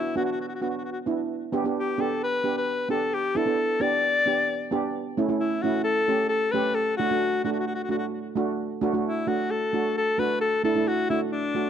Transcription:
Already playing: alto saxophone E4
0.16 steel pan B3 D4 F#4, alto saxophone F#4
0.25 alto saxophone F#4
0.32 alto saxophone F#4
0.41 alto saxophone F#4
0.48 alto saxophone F#4
0.55 alto saxophone F#4
0.61 steel pan B3 D4 F#4, alto saxophone F#4
0.69 alto saxophone F#4
0.77 alto saxophone F#4
0.85 alto saxophone F#4
0.92 alto saxophone F#4
1.06 steel pan B3 D4 E4
1.53 steel pan B3 D4 G4
1.64 steel pan B3 D4 G4
1.80 alto saxophone G4
1.98 steel pan B3 D4 G4, alto saxophone A4
2.23 alto saxophone B4
2.44 steel pan B3 D4 G4
2.57 alto saxophone B4
2.89 steel pan B3 D4 G4, alto saxophone A4
3.14 alto saxophone G4
3.35 steel pan B3 D4 E4, alto saxophone A4
3.46 steel pan B3 D4 A4
3.80 steel pan B3 D4 G4, alto saxophone D5
4.26 steel pan B3 D4 G4
4.71 steel pan B3 D4 G4
5.17 steel pan A3 C#4 E4
5.29 steel pan A3 C#4 E4
5.40 alto saxophone E4
5.62 steel pan A3 C#4 E4, alto saxophone F#4
5.84 alto saxophone A4
6.08 steel pan A3 C#4 G4
6.29 alto saxophone A4
6.51 steel pan A3 C#4 G4, alto saxophone B4
6.75 alto saxophone A4
6.97 steel pan A3 D4 F#4, alto saxophone F#4
7.11 steel pan A3 D4 F#4
7.44 steel pan A3 D4 F#4, alto saxophone F#4
7.52 alto saxophone F#4
7.59 alto saxophone F#4
7.67 alto saxophone F#4
7.75 alto saxophone F#4
7.83 alto saxophone F#4
7.89 steel pan A3 D4 F#4, alto saxophone F#4
7.98 alto saxophone F#4
8.36 steel pan A3 D4 F#4
8.81 steel pan A3 D4 F#4
8.93 steel pan A3 D4 F#4
9.05 alto saxophone E4
9.27 steel pan A3 D4 F#4, alto saxophone F#4
9.51 alto saxophone A4
9.73 steel pan A3 D4 F#4
9.97 alto saxophone A4
10.18 steel pan A3 D4 F#4, alto saxophone B4
10.41 alto saxophone A4
10.64 steel pan A3 D4 E4, alto saxophone A4
10.75 steel pan A3 D4 E4
10.88 alto saxophone F#4
11.10 steel pan A3 D4 F#4, alto saxophone E4
11.32 alto saxophone D4
11.55 steel pan A3 D4 F#4

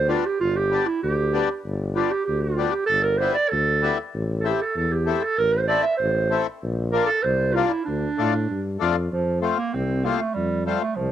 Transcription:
Already playing: tuba D2
0.08 accordion G3 B3 D4, clarinet F4
0.26 clarinet G4
0.40 tuba G1, clarinet F4
0.56 clarinet G4
0.71 accordion G3 B3 D4
0.86 clarinet E4
1.03 tuba D2, clarinet G4
1.33 accordion G3 B3 D4
1.66 tuba G1
1.95 accordion G3 B3 D4, clarinet F4
2.11 clarinet G4
2.26 tuba D2, clarinet G4
2.41 clarinet F4
2.57 accordion G3 B3 D4
2.71 clarinet G4
2.86 clarinet A4
2.90 tuba G1
3.03 clarinet A#4
3.18 accordion G3 B3 E4, clarinet C5
3.34 clarinet D5
3.49 tuba D2, clarinet A4
3.82 accordion G3 B3 E4
4.14 tuba A1
4.40 accordion A3, clarinet A4
4.44 accordion C4 E4, clarinet G4
4.62 clarinet A4
4.76 tuba E2, clarinet A4
4.92 clarinet G4
5.06 accordion A3 C4 E4
5.22 clarinet A4
5.37 tuba A1, clarinet A#4
5.53 clarinet C5
5.68 accordion A3 C4 E4, clarinet D5
5.82 clarinet E5
5.97 tuba A1, clarinet C5
6.30 accordion A3 C4 E4
6.63 tuba A#1
6.92 accordion A#3 D4 F4, clarinet A#4
7.06 clarinet A4
7.23 tuba C2, clarinet C5
7.53 accordion A#3 D4 F4, clarinet F4
7.69 clarinet E4
7.85 tuba D2, clarinet D4
8.18 tuba A2, accordion A3 D4 F4
8.51 tuba G2
8.79 tuba F2, accordion A3 D4 F4
9.10 tuba F2, clarinet F3
9.41 clarinet A3, accordion A3 C4 F4
9.57 clarinet A#3
9.73 tuba C2, clarinet C4
10.04 accordion A3 C4 F4, clarinet A#3
10.19 clarinet A3
10.34 tuba F2, clarinet G3
10.65 clarinet G3, accordion A3 C4 F4
10.81 clarinet A3
10.96 tuba C2, clarinet F3

